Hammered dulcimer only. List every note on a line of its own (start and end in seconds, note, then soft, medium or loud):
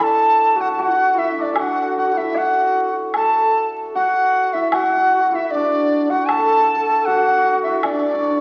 0.00 1.38 D4 medium
0.00 1.17 E4 medium
0.00 0.56 F#4 medium
0.00 1.52 A4 loud
0.56 0.78 F#4 medium
0.78 1.59 F#4 medium
1.18 1.32 E4 medium
1.32 2.17 E4 medium
1.38 5.12 D4 medium
1.52 3.16 A4 medium
1.59 1.98 F#4 medium
1.98 2.35 F#4 medium
2.18 4.54 E4 medium
2.35 3.95 F#4 medium
3.16 6.09 A4 medium
3.95 4.73 F#4 medium
4.54 5.33 E4 medium
4.73 4.83 F#4 medium
4.83 4.89 F#4 medium
4.90 4.96 F#4 medium
4.97 5.06 F#4 medium
5.06 5.10 F#4 medium
5.11 5.20 F#4 medium
5.20 5.30 F#4 medium
5.30 7.65 E4 medium
5.30 6.09 F#4 medium
5.54 7.85 D4 medium
6.10 7.07 F#4 medium
6.29 6.37 A4 medium
6.38 6.44 A4 medium
6.45 6.51 A4 medium
6.51 6.60 A4 medium
6.60 6.68 A4 medium
6.69 6.75 A4 medium
6.75 6.89 A4 medium
6.89 8.41 A4 medium
7.07 7.15 F#4 medium
7.15 7.23 F#4 medium
7.23 7.30 F#4 medium
7.31 7.38 F#4 medium
7.38 7.44 F#4 medium
7.44 7.52 F#4 medium
7.53 8.41 F#4 medium
7.65 8.41 E4 medium
7.86 7.93 D4 medium
7.93 8.00 D4 soft
8.00 8.05 D4 medium
8.06 8.14 D4 soft
8.14 8.21 D4 soft
8.21 8.29 D4 soft
8.30 8.39 D4 soft